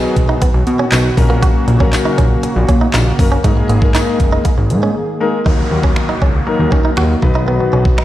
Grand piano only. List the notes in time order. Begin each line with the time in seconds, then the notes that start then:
Already playing: F#3 B3 D#4 G#4
1.17 F#3 A#3 C#4 A#4
1.80 F#3 A#3 C#4 A#4
3.19 F#3 A#3 C#4 A#4
3.44 G#3 A#3 D#4 A#4
3.82 G#3 A#3 D#4 A#4
5.20 G#3 A#3 D#4 A#4
5.45 F#3 A#3 D#4 A#4
6.47 F#3 A#3 D#4 A#4
7.22 F#3 B3 D#4 B4